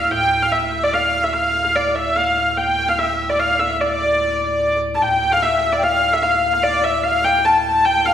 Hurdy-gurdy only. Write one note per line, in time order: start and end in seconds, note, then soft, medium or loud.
0.00 0.11 F5 medium
0.11 0.43 G5 medium
0.43 0.52 F5 medium
0.52 0.84 E5 medium
0.84 0.94 D5 medium
0.94 1.24 F5 medium
1.24 1.34 E5 medium
1.34 1.64 F5 medium
1.64 1.76 F5 medium
1.76 1.96 D5 medium
1.96 2.17 E5 medium
2.17 2.58 F5 medium
2.58 2.89 G5 medium
2.89 2.99 F5 medium
2.99 3.30 E5 medium
3.30 3.40 D5 medium
3.40 3.60 F5 medium
3.60 3.81 E5 medium
3.81 4.78 D5 medium
4.95 5.02 A5 medium
5.02 5.33 G5 medium
5.33 5.43 F5 medium
5.42 5.73 E5 medium
5.73 5.84 D5 medium
5.84 6.13 F5 medium
6.13 6.24 E5 medium
6.23 6.53 F5 medium
6.53 6.63 F5 medium
6.63 6.85 D5 medium
6.84 7.05 E5 medium
7.04 7.24 F5 medium
7.24 7.46 G5 medium
7.45 7.87 A5 medium
7.85 8.06 G5 medium
8.06 8.14 F5 medium